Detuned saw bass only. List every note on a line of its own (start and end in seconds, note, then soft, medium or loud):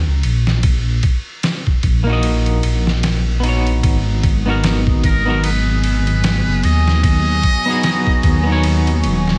0.07 0.22 C#2 medium
0.24 1.01 A#1 medium
1.84 2.61 A#1 medium
2.64 3.81 A#1 medium
3.84 6.43 G#1 medium
6.48 6.62 F#1 medium
6.64 7.41 D#2 medium
8.24 9.06 D#2 loud
9.04 9.38 D#1 medium